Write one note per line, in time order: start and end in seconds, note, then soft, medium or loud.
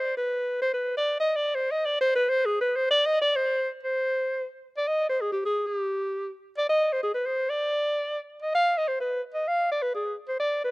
0.00 0.15 C5 loud
0.17 0.58 B4 medium
0.62 0.71 C5 loud
0.73 0.94 B4 medium
0.97 1.17 D5 loud
1.20 1.37 D#5 loud
1.36 1.56 D5 medium
1.55 1.73 C5 medium
1.71 1.87 D#5 medium
1.86 1.99 D5 medium
2.01 2.13 C5 loud
2.15 2.31 B4 loud
2.30 2.47 C5 loud
2.46 2.60 G#4 medium
2.61 2.78 B4 medium
2.76 2.90 C5 medium
2.91 3.08 D5 loud
3.06 3.21 D#5 loud
3.21 3.38 D5 loud
3.36 3.69 C5 medium
3.83 4.47 C5 medium
4.77 4.89 D5 loud
4.88 5.08 D#5 loud
5.09 5.23 C5 medium
5.21 5.32 G#4 medium
5.32 5.42 G4 medium
5.45 5.66 G#4 medium
5.66 5.77 G#4 medium
5.77 6.35 G4 medium
6.58 6.68 D5 loud
6.69 6.94 D#5 loud
6.93 7.03 C5 medium
7.03 7.14 G#4 medium
7.14 7.28 B4 medium
7.26 7.51 C5 medium
7.50 8.19 D5 loud
8.42 8.53 D#5 medium
8.54 8.79 F5 loud
8.77 8.89 D#5 loud
8.88 9.00 C5 medium
9.01 9.21 B4 medium
9.34 9.49 D#5 medium
9.48 9.70 F5 loud
9.71 9.84 D5 loud
9.82 9.93 B4 medium
9.95 10.15 G#4 medium
10.29 10.38 C5 medium
10.40 10.60 D5 loud
10.64 10.71 B4 medium